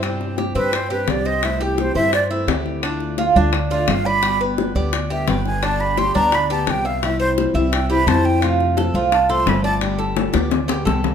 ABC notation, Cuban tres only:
X:1
M:4/4
L:1/8
Q:1/4=172
K:Gmix
V:1 name="Cuban tres"
C2 G C2 G2 c- | c G2 c2 E G2 | D2 F D2 F2 d- | d B2 d2 G B2 |
D2 G D2 G2 e- | e c2 e2 G c2 | F2 A F2 A2 d- | d A2 d2 G A2 |]